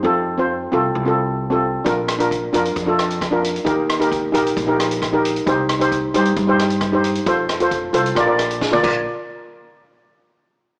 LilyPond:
<<
  \new Staff \with { instrumentName = "Steel pan" } { \time 4/4 \key bes \major \tempo 4 = 133 <c' f' a'>8 r16 <c' f' c''>8 r16 <c' f' a'>8 r16 <c' f' a'>8 r8 <c' f' a'>8 r16 | <d' f' bes'>8 r16 <d' f' bes'>8 r16 <d' f' bes'>8 r16 <d' f' a'>8 r8 <d' f' bes'>8 r16 | <ees' g' bes'>8 r16 <ees' g' bes'>8 r16 <ees' g' bes'>8 r16 <ees' g' bes'>8 r8 <ees' g' bes'>8 r16 | <ees' g' c''>8 r16 <ees' g' c''>8 r16 <ees' g' c''>8 r16 <ees' g' c''>8 r8 <ees' g' c''>8 r16 |
<f' a' c''>8 r16 <f' a' c''>8 r16 <f' a' c''>8 <f' bes' d''>16 <f' bes' d''>8 r8 <f' bes' d''>16 <f' bes' d''>8 | r1 | }
  \new Staff \with { instrumentName = "Upright bass" } { \clef bass \time 4/4 \key bes \major f,4. c,8 c,2 | bes,,4. f,8 f,2 | ees,4. bes,,8 bes,,2 | c,4. g,8 g,2 |
f,4. c,8 bes,,4. bes,,8 | r1 | }
  \new DrumStaff \with { instrumentName = "Drums" } \drummode { \time 4/4 r4 r4 r4 r4 | <hh bd>8 <hh ss>16 hh16 <hh bd>8 hh16 hh16 <hh bd>8 <hh ss>16 hh16 <hh bd ss>8 hh16 hh16 | <hh bd>8 <hh ss>16 hh16 <hh bd>8 hh16 hh16 <hh bd>8 <hh ss>16 hh16 <hh bd ss>8 hh16 hh16 | <hh bd>8 <hh ss>16 hh16 <hh bd>8 hh16 hh16 <hh bd>8 <hh ss>16 hh16 <hh bd ss>8 hh16 hh16 |
<hh bd>8 <hh ss>16 hh16 <hh bd>8 hh16 hh16 <hh bd ss>8 <hh ss>16 hh16 <bd sn>16 tommh16 <cymc bd>8 | r4 r4 r4 r4 | }
>>